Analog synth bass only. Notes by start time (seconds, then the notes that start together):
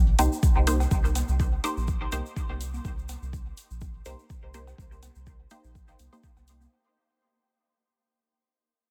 Already playing: A#1
0.19 C2
0.56 C2
0.91 C2
1.29 C2
1.77 A#1
2.12 C2
2.50 C2
2.85 C2
3.22 C2
3.71 A#1
4.06 C2
4.43 C2
4.78 C2
5.16 C2
5.64 A#1
5.99 C2
6.37 C2